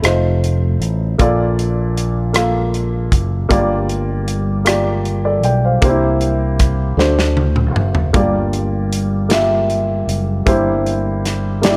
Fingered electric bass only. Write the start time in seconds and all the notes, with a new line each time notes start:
0.03 F1
0.80 A1
1.19 A#1
3.12 F#1
3.50 G1
5.43 B1
5.82 C2
6.97 D2
7.75 F#1
8.14 G1
10.07 F#1
10.46 G1